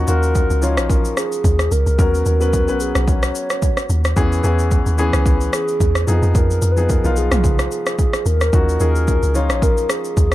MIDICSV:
0, 0, Header, 1, 5, 480
1, 0, Start_track
1, 0, Key_signature, -6, "minor"
1, 0, Tempo, 545455
1, 1749, Time_signature, 4, 2, 24, 8
1, 9107, End_track
2, 0, Start_track
2, 0, Title_t, "Soft synth lead"
2, 0, Program_c, 0, 80
2, 72, Note_on_c, 0, 70, 107
2, 553, Note_on_c, 0, 73, 107
2, 566, Note_off_c, 0, 70, 0
2, 788, Note_on_c, 0, 70, 104
2, 801, Note_off_c, 0, 73, 0
2, 1032, Note_on_c, 0, 68, 101
2, 1045, Note_off_c, 0, 70, 0
2, 1510, Note_on_c, 0, 70, 102
2, 1524, Note_off_c, 0, 68, 0
2, 1985, Note_off_c, 0, 70, 0
2, 1991, Note_on_c, 0, 70, 101
2, 2470, Note_on_c, 0, 68, 90
2, 2483, Note_off_c, 0, 70, 0
2, 2713, Note_on_c, 0, 73, 95
2, 2726, Note_off_c, 0, 68, 0
2, 3431, Note_off_c, 0, 73, 0
2, 4873, Note_on_c, 0, 68, 90
2, 5317, Note_off_c, 0, 68, 0
2, 5431, Note_on_c, 0, 68, 81
2, 5503, Note_off_c, 0, 68, 0
2, 5594, Note_on_c, 0, 70, 92
2, 5912, Note_on_c, 0, 71, 88
2, 5925, Note_off_c, 0, 70, 0
2, 6071, Note_on_c, 0, 70, 90
2, 6085, Note_off_c, 0, 71, 0
2, 6311, Note_on_c, 0, 68, 88
2, 6324, Note_off_c, 0, 70, 0
2, 6783, Note_off_c, 0, 68, 0
2, 6788, Note_on_c, 0, 68, 87
2, 7011, Note_off_c, 0, 68, 0
2, 7028, Note_on_c, 0, 68, 92
2, 7271, Note_on_c, 0, 70, 100
2, 7284, Note_off_c, 0, 68, 0
2, 7745, Note_off_c, 0, 70, 0
2, 7751, Note_on_c, 0, 70, 99
2, 8230, Note_on_c, 0, 73, 93
2, 8243, Note_off_c, 0, 70, 0
2, 8472, Note_on_c, 0, 70, 103
2, 8485, Note_off_c, 0, 73, 0
2, 8712, Note_on_c, 0, 68, 100
2, 8725, Note_off_c, 0, 70, 0
2, 9107, Note_off_c, 0, 68, 0
2, 9107, End_track
3, 0, Start_track
3, 0, Title_t, "Grand piano"
3, 0, Program_c, 1, 0
3, 0, Note_on_c, 1, 53, 75
3, 0, Note_on_c, 1, 61, 68
3, 0, Note_on_c, 1, 63, 69
3, 0, Note_on_c, 1, 66, 80
3, 14, Control_c, 1, 64, 127
3, 63, Note_on_c, 1, 65, 71
3, 68, Note_off_c, 1, 61, 0
3, 68, Note_on_c, 1, 61, 66
3, 71, Note_off_c, 1, 63, 0
3, 71, Note_on_c, 1, 63, 63
3, 75, Note_off_c, 1, 66, 0
3, 75, Note_on_c, 1, 66, 83
3, 459, Note_off_c, 1, 65, 0
3, 462, Note_off_c, 1, 61, 0
3, 463, Note_off_c, 1, 63, 0
3, 465, Note_off_c, 1, 66, 0
3, 543, Note_off_c, 1, 53, 0
3, 543, Note_on_c, 1, 53, 77
3, 547, Note_on_c, 1, 61, 68
3, 552, Note_on_c, 1, 63, 69
3, 555, Note_on_c, 1, 65, 82
3, 1318, Note_off_c, 1, 53, 0
3, 1321, Note_off_c, 1, 61, 0
3, 1323, Note_off_c, 1, 63, 0
3, 1324, Note_off_c, 1, 65, 0
3, 1743, Note_on_c, 1, 54, 77
3, 1747, Note_on_c, 1, 59, 64
3, 1750, Note_on_c, 1, 61, 69
3, 1754, Note_on_c, 1, 70, 82
3, 1762, Control_c, 1, 64, 0
3, 1911, Control_c, 1, 64, 127
3, 2038, Note_off_c, 1, 54, 0
3, 2040, Note_off_c, 1, 59, 0
3, 2042, Note_off_c, 1, 61, 0
3, 2044, Note_off_c, 1, 70, 0
3, 2114, Note_on_c, 1, 54, 76
3, 2118, Note_on_c, 1, 59, 67
3, 2122, Note_on_c, 1, 61, 68
3, 2125, Note_on_c, 1, 71, 81
3, 2304, Note_off_c, 1, 54, 0
3, 2306, Note_off_c, 1, 59, 0
3, 2308, Note_off_c, 1, 61, 0
3, 2310, Note_off_c, 1, 71, 0
3, 2355, Note_on_c, 1, 54, 74
3, 2359, Note_on_c, 1, 59, 67
3, 2363, Note_on_c, 1, 61, 68
3, 2366, Note_on_c, 1, 71, 82
3, 3121, Note_off_c, 1, 54, 0
3, 3123, Note_off_c, 1, 59, 0
3, 3125, Note_off_c, 1, 61, 0
3, 3126, Note_off_c, 1, 71, 0
3, 3663, Note_on_c, 1, 52, 89
3, 3666, Note_on_c, 1, 59, 82
3, 3670, Note_on_c, 1, 61, 80
3, 3674, Note_on_c, 1, 68, 100
3, 3680, Control_c, 1, 64, 0
3, 3819, Control_c, 1, 64, 127
3, 3862, Note_off_c, 1, 52, 0
3, 3864, Note_off_c, 1, 59, 0
3, 3866, Note_off_c, 1, 61, 0
3, 3868, Note_off_c, 1, 68, 0
3, 3901, Note_on_c, 1, 52, 88
3, 3905, Note_on_c, 1, 59, 79
3, 3909, Note_on_c, 1, 61, 79
3, 3913, Note_on_c, 1, 68, 97
3, 4298, Note_off_c, 1, 52, 0
3, 4300, Note_off_c, 1, 59, 0
3, 4302, Note_off_c, 1, 61, 0
3, 4304, Note_off_c, 1, 68, 0
3, 4383, Note_on_c, 1, 52, 92
3, 4388, Note_on_c, 1, 59, 84
3, 4392, Note_on_c, 1, 61, 86
3, 4394, Note_on_c, 1, 68, 102
3, 5158, Note_off_c, 1, 52, 0
3, 5161, Note_off_c, 1, 59, 0
3, 5163, Note_off_c, 1, 61, 0
3, 5164, Note_off_c, 1, 68, 0
3, 5342, Note_on_c, 1, 53, 84
3, 5347, Note_on_c, 1, 59, 72
3, 5350, Note_on_c, 1, 63, 72
3, 5354, Note_on_c, 1, 68, 86
3, 5360, Control_c, 1, 64, 0
3, 5526, Control_c, 1, 64, 127
3, 5825, Note_off_c, 1, 53, 0
3, 5827, Note_off_c, 1, 59, 0
3, 5829, Note_off_c, 1, 63, 0
3, 5831, Note_off_c, 1, 68, 0
3, 5953, Note_on_c, 1, 53, 75
3, 5957, Note_on_c, 1, 59, 69
3, 5961, Note_on_c, 1, 63, 67
3, 5964, Note_on_c, 1, 68, 83
3, 6144, Note_off_c, 1, 53, 0
3, 6146, Note_off_c, 1, 59, 0
3, 6148, Note_off_c, 1, 63, 0
3, 6149, Note_off_c, 1, 68, 0
3, 6195, Note_on_c, 1, 53, 76
3, 6198, Note_on_c, 1, 59, 70
3, 6202, Note_on_c, 1, 63, 67
3, 6208, Note_on_c, 1, 65, 86
3, 6961, Note_off_c, 1, 53, 0
3, 6962, Note_off_c, 1, 59, 0
3, 6964, Note_off_c, 1, 63, 0
3, 6967, Note_off_c, 1, 65, 0
3, 7503, Note_on_c, 1, 53, 74
3, 7507, Note_on_c, 1, 61, 67
3, 7510, Note_on_c, 1, 63, 69
3, 7514, Note_on_c, 1, 66, 80
3, 7521, Control_c, 1, 64, 0
3, 7673, Control_c, 1, 64, 127
3, 7702, Note_off_c, 1, 53, 0
3, 7704, Note_off_c, 1, 61, 0
3, 7706, Note_off_c, 1, 63, 0
3, 7708, Note_off_c, 1, 66, 0
3, 7742, Note_on_c, 1, 53, 68
3, 7745, Note_on_c, 1, 61, 68
3, 7750, Note_on_c, 1, 63, 63
3, 7753, Note_on_c, 1, 68, 83
3, 8139, Note_off_c, 1, 53, 0
3, 8140, Note_off_c, 1, 61, 0
3, 8143, Note_off_c, 1, 63, 0
3, 8144, Note_off_c, 1, 68, 0
3, 8220, Note_on_c, 1, 53, 75
3, 8224, Note_on_c, 1, 61, 69
3, 8228, Note_on_c, 1, 63, 71
3, 8233, Note_on_c, 1, 65, 85
3, 8997, Note_off_c, 1, 53, 0
3, 8999, Note_off_c, 1, 61, 0
3, 9001, Note_off_c, 1, 63, 0
3, 9003, Note_off_c, 1, 65, 0
3, 9107, End_track
4, 0, Start_track
4, 0, Title_t, "Log drum bass"
4, 0, Program_c, 2, 39
4, 71, Note_on_c, 2, 39, 100
4, 411, Note_off_c, 2, 39, 0
4, 443, Note_on_c, 2, 37, 88
4, 682, Note_on_c, 2, 34, 90
4, 695, Note_off_c, 2, 37, 0
4, 1001, Note_off_c, 2, 34, 0
4, 1270, Note_on_c, 2, 39, 108
4, 1490, Note_off_c, 2, 39, 0
4, 1509, Note_on_c, 2, 37, 99
4, 1630, Note_off_c, 2, 37, 0
4, 1640, Note_on_c, 2, 37, 85
4, 1739, Note_off_c, 2, 37, 0
4, 1749, Note_on_c, 2, 39, 110
4, 1969, Note_off_c, 2, 39, 0
4, 1988, Note_on_c, 2, 39, 104
4, 2360, Note_on_c, 2, 35, 90
4, 2373, Note_off_c, 2, 39, 0
4, 2581, Note_off_c, 2, 35, 0
4, 2600, Note_on_c, 2, 35, 85
4, 2920, Note_off_c, 2, 35, 0
4, 3428, Note_on_c, 2, 39, 84
4, 3649, Note_off_c, 2, 39, 0
4, 3666, Note_on_c, 2, 40, 100
4, 3888, Note_off_c, 2, 40, 0
4, 3906, Note_on_c, 2, 40, 97
4, 4249, Note_off_c, 2, 40, 0
4, 4280, Note_on_c, 2, 39, 86
4, 4500, Note_off_c, 2, 39, 0
4, 4520, Note_on_c, 2, 37, 94
4, 4840, Note_off_c, 2, 37, 0
4, 5107, Note_on_c, 2, 40, 96
4, 5328, Note_off_c, 2, 40, 0
4, 5348, Note_on_c, 2, 41, 97
4, 5469, Note_off_c, 2, 41, 0
4, 5478, Note_on_c, 2, 41, 98
4, 5578, Note_off_c, 2, 41, 0
4, 5587, Note_on_c, 2, 41, 106
4, 5808, Note_off_c, 2, 41, 0
4, 5825, Note_on_c, 2, 41, 98
4, 6168, Note_off_c, 2, 41, 0
4, 6200, Note_on_c, 2, 35, 88
4, 6420, Note_off_c, 2, 35, 0
4, 6438, Note_on_c, 2, 35, 88
4, 6759, Note_off_c, 2, 35, 0
4, 7267, Note_on_c, 2, 39, 89
4, 7488, Note_off_c, 2, 39, 0
4, 7508, Note_on_c, 2, 39, 104
4, 7729, Note_off_c, 2, 39, 0
4, 7748, Note_on_c, 2, 39, 101
4, 8090, Note_off_c, 2, 39, 0
4, 8121, Note_on_c, 2, 37, 89
4, 8361, Note_on_c, 2, 34, 89
4, 8374, Note_off_c, 2, 37, 0
4, 8680, Note_off_c, 2, 34, 0
4, 8950, Note_on_c, 2, 39, 103
4, 9107, Note_off_c, 2, 39, 0
4, 9107, End_track
5, 0, Start_track
5, 0, Title_t, "Drums"
5, 66, Note_on_c, 9, 82, 97
5, 154, Note_off_c, 9, 82, 0
5, 201, Note_on_c, 9, 82, 53
5, 289, Note_off_c, 9, 82, 0
5, 309, Note_on_c, 9, 82, 67
5, 310, Note_on_c, 9, 36, 88
5, 397, Note_off_c, 9, 82, 0
5, 398, Note_off_c, 9, 36, 0
5, 443, Note_on_c, 9, 82, 53
5, 531, Note_off_c, 9, 82, 0
5, 548, Note_on_c, 9, 82, 78
5, 636, Note_off_c, 9, 82, 0
5, 681, Note_on_c, 9, 37, 96
5, 682, Note_on_c, 9, 82, 59
5, 769, Note_off_c, 9, 37, 0
5, 770, Note_off_c, 9, 82, 0
5, 788, Note_on_c, 9, 36, 112
5, 792, Note_on_c, 9, 82, 74
5, 876, Note_off_c, 9, 36, 0
5, 880, Note_off_c, 9, 82, 0
5, 923, Note_on_c, 9, 82, 62
5, 1011, Note_off_c, 9, 82, 0
5, 1030, Note_on_c, 9, 37, 93
5, 1032, Note_on_c, 9, 82, 84
5, 1118, Note_off_c, 9, 37, 0
5, 1120, Note_off_c, 9, 82, 0
5, 1162, Note_on_c, 9, 82, 58
5, 1250, Note_off_c, 9, 82, 0
5, 1270, Note_on_c, 9, 36, 88
5, 1272, Note_on_c, 9, 82, 74
5, 1358, Note_off_c, 9, 36, 0
5, 1360, Note_off_c, 9, 82, 0
5, 1401, Note_on_c, 9, 37, 83
5, 1404, Note_on_c, 9, 82, 48
5, 1489, Note_off_c, 9, 37, 0
5, 1492, Note_off_c, 9, 82, 0
5, 1510, Note_on_c, 9, 82, 86
5, 1598, Note_off_c, 9, 82, 0
5, 1643, Note_on_c, 9, 82, 52
5, 1731, Note_off_c, 9, 82, 0
5, 1749, Note_on_c, 9, 36, 112
5, 1750, Note_on_c, 9, 82, 75
5, 1837, Note_off_c, 9, 36, 0
5, 1838, Note_off_c, 9, 82, 0
5, 1888, Note_on_c, 9, 82, 56
5, 1976, Note_off_c, 9, 82, 0
5, 1985, Note_on_c, 9, 82, 95
5, 2073, Note_off_c, 9, 82, 0
5, 2120, Note_on_c, 9, 82, 58
5, 2208, Note_off_c, 9, 82, 0
5, 2227, Note_on_c, 9, 82, 69
5, 2230, Note_on_c, 9, 36, 87
5, 2315, Note_off_c, 9, 82, 0
5, 2318, Note_off_c, 9, 36, 0
5, 2360, Note_on_c, 9, 82, 49
5, 2448, Note_off_c, 9, 82, 0
5, 2465, Note_on_c, 9, 82, 81
5, 2553, Note_off_c, 9, 82, 0
5, 2598, Note_on_c, 9, 37, 93
5, 2600, Note_on_c, 9, 82, 60
5, 2686, Note_off_c, 9, 37, 0
5, 2688, Note_off_c, 9, 82, 0
5, 2707, Note_on_c, 9, 36, 113
5, 2709, Note_on_c, 9, 82, 73
5, 2795, Note_off_c, 9, 36, 0
5, 2797, Note_off_c, 9, 82, 0
5, 2840, Note_on_c, 9, 82, 64
5, 2841, Note_on_c, 9, 37, 96
5, 2928, Note_off_c, 9, 82, 0
5, 2929, Note_off_c, 9, 37, 0
5, 2949, Note_on_c, 9, 82, 88
5, 3037, Note_off_c, 9, 82, 0
5, 3080, Note_on_c, 9, 82, 55
5, 3082, Note_on_c, 9, 37, 92
5, 3168, Note_off_c, 9, 82, 0
5, 3170, Note_off_c, 9, 37, 0
5, 3188, Note_on_c, 9, 82, 79
5, 3189, Note_on_c, 9, 36, 92
5, 3276, Note_off_c, 9, 82, 0
5, 3277, Note_off_c, 9, 36, 0
5, 3318, Note_on_c, 9, 37, 84
5, 3321, Note_on_c, 9, 82, 48
5, 3406, Note_off_c, 9, 37, 0
5, 3409, Note_off_c, 9, 82, 0
5, 3428, Note_on_c, 9, 82, 85
5, 3516, Note_off_c, 9, 82, 0
5, 3559, Note_on_c, 9, 82, 54
5, 3564, Note_on_c, 9, 37, 91
5, 3647, Note_off_c, 9, 82, 0
5, 3652, Note_off_c, 9, 37, 0
5, 3667, Note_on_c, 9, 82, 74
5, 3668, Note_on_c, 9, 36, 118
5, 3755, Note_off_c, 9, 82, 0
5, 3756, Note_off_c, 9, 36, 0
5, 3805, Note_on_c, 9, 82, 56
5, 3893, Note_off_c, 9, 82, 0
5, 3904, Note_on_c, 9, 82, 97
5, 3992, Note_off_c, 9, 82, 0
5, 4039, Note_on_c, 9, 82, 57
5, 4127, Note_off_c, 9, 82, 0
5, 4146, Note_on_c, 9, 82, 68
5, 4148, Note_on_c, 9, 36, 86
5, 4234, Note_off_c, 9, 82, 0
5, 4236, Note_off_c, 9, 36, 0
5, 4279, Note_on_c, 9, 82, 49
5, 4367, Note_off_c, 9, 82, 0
5, 4384, Note_on_c, 9, 82, 78
5, 4472, Note_off_c, 9, 82, 0
5, 4517, Note_on_c, 9, 37, 94
5, 4518, Note_on_c, 9, 82, 60
5, 4605, Note_off_c, 9, 37, 0
5, 4606, Note_off_c, 9, 82, 0
5, 4626, Note_on_c, 9, 36, 113
5, 4628, Note_on_c, 9, 82, 77
5, 4714, Note_off_c, 9, 36, 0
5, 4716, Note_off_c, 9, 82, 0
5, 4759, Note_on_c, 9, 82, 60
5, 4847, Note_off_c, 9, 82, 0
5, 4867, Note_on_c, 9, 37, 97
5, 4868, Note_on_c, 9, 82, 84
5, 4955, Note_off_c, 9, 37, 0
5, 4956, Note_off_c, 9, 82, 0
5, 4999, Note_on_c, 9, 82, 55
5, 5087, Note_off_c, 9, 82, 0
5, 5108, Note_on_c, 9, 36, 95
5, 5109, Note_on_c, 9, 82, 75
5, 5196, Note_off_c, 9, 36, 0
5, 5197, Note_off_c, 9, 82, 0
5, 5239, Note_on_c, 9, 37, 84
5, 5241, Note_on_c, 9, 82, 51
5, 5327, Note_off_c, 9, 37, 0
5, 5329, Note_off_c, 9, 82, 0
5, 5347, Note_on_c, 9, 82, 81
5, 5435, Note_off_c, 9, 82, 0
5, 5480, Note_on_c, 9, 82, 51
5, 5568, Note_off_c, 9, 82, 0
5, 5587, Note_on_c, 9, 36, 119
5, 5588, Note_on_c, 9, 82, 78
5, 5675, Note_off_c, 9, 36, 0
5, 5676, Note_off_c, 9, 82, 0
5, 5726, Note_on_c, 9, 82, 54
5, 5814, Note_off_c, 9, 82, 0
5, 5824, Note_on_c, 9, 82, 97
5, 5912, Note_off_c, 9, 82, 0
5, 5958, Note_on_c, 9, 82, 54
5, 6046, Note_off_c, 9, 82, 0
5, 6066, Note_on_c, 9, 82, 70
5, 6068, Note_on_c, 9, 36, 89
5, 6154, Note_off_c, 9, 82, 0
5, 6156, Note_off_c, 9, 36, 0
5, 6199, Note_on_c, 9, 82, 50
5, 6287, Note_off_c, 9, 82, 0
5, 6304, Note_on_c, 9, 82, 78
5, 6392, Note_off_c, 9, 82, 0
5, 6438, Note_on_c, 9, 37, 96
5, 6439, Note_on_c, 9, 45, 99
5, 6439, Note_on_c, 9, 82, 60
5, 6526, Note_off_c, 9, 37, 0
5, 6527, Note_off_c, 9, 45, 0
5, 6527, Note_off_c, 9, 82, 0
5, 6546, Note_on_c, 9, 36, 109
5, 6549, Note_on_c, 9, 82, 75
5, 6634, Note_off_c, 9, 36, 0
5, 6637, Note_off_c, 9, 82, 0
5, 6679, Note_on_c, 9, 82, 63
5, 6680, Note_on_c, 9, 37, 89
5, 6767, Note_off_c, 9, 82, 0
5, 6768, Note_off_c, 9, 37, 0
5, 6788, Note_on_c, 9, 82, 85
5, 6876, Note_off_c, 9, 82, 0
5, 6920, Note_on_c, 9, 82, 55
5, 6922, Note_on_c, 9, 37, 94
5, 7008, Note_off_c, 9, 82, 0
5, 7010, Note_off_c, 9, 37, 0
5, 7028, Note_on_c, 9, 36, 93
5, 7029, Note_on_c, 9, 82, 75
5, 7116, Note_off_c, 9, 36, 0
5, 7117, Note_off_c, 9, 82, 0
5, 7158, Note_on_c, 9, 37, 87
5, 7161, Note_on_c, 9, 82, 51
5, 7246, Note_off_c, 9, 37, 0
5, 7249, Note_off_c, 9, 82, 0
5, 7267, Note_on_c, 9, 82, 84
5, 7355, Note_off_c, 9, 82, 0
5, 7399, Note_on_c, 9, 82, 52
5, 7403, Note_on_c, 9, 37, 91
5, 7487, Note_off_c, 9, 82, 0
5, 7491, Note_off_c, 9, 37, 0
5, 7507, Note_on_c, 9, 82, 77
5, 7508, Note_on_c, 9, 36, 120
5, 7595, Note_off_c, 9, 82, 0
5, 7596, Note_off_c, 9, 36, 0
5, 7646, Note_on_c, 9, 82, 55
5, 7734, Note_off_c, 9, 82, 0
5, 7744, Note_on_c, 9, 82, 96
5, 7832, Note_off_c, 9, 82, 0
5, 7880, Note_on_c, 9, 82, 54
5, 7968, Note_off_c, 9, 82, 0
5, 7987, Note_on_c, 9, 82, 69
5, 7990, Note_on_c, 9, 36, 90
5, 8075, Note_off_c, 9, 82, 0
5, 8078, Note_off_c, 9, 36, 0
5, 8120, Note_on_c, 9, 82, 52
5, 8208, Note_off_c, 9, 82, 0
5, 8226, Note_on_c, 9, 82, 78
5, 8314, Note_off_c, 9, 82, 0
5, 8358, Note_on_c, 9, 37, 93
5, 8359, Note_on_c, 9, 82, 60
5, 8446, Note_off_c, 9, 37, 0
5, 8447, Note_off_c, 9, 82, 0
5, 8468, Note_on_c, 9, 36, 112
5, 8471, Note_on_c, 9, 82, 78
5, 8556, Note_off_c, 9, 36, 0
5, 8559, Note_off_c, 9, 82, 0
5, 8601, Note_on_c, 9, 82, 62
5, 8689, Note_off_c, 9, 82, 0
5, 8707, Note_on_c, 9, 37, 96
5, 8709, Note_on_c, 9, 82, 88
5, 8795, Note_off_c, 9, 37, 0
5, 8797, Note_off_c, 9, 82, 0
5, 8839, Note_on_c, 9, 82, 54
5, 8927, Note_off_c, 9, 82, 0
5, 8949, Note_on_c, 9, 36, 91
5, 8950, Note_on_c, 9, 82, 75
5, 9037, Note_off_c, 9, 36, 0
5, 9038, Note_off_c, 9, 82, 0
5, 9078, Note_on_c, 9, 37, 92
5, 9107, Note_off_c, 9, 37, 0
5, 9107, End_track
0, 0, End_of_file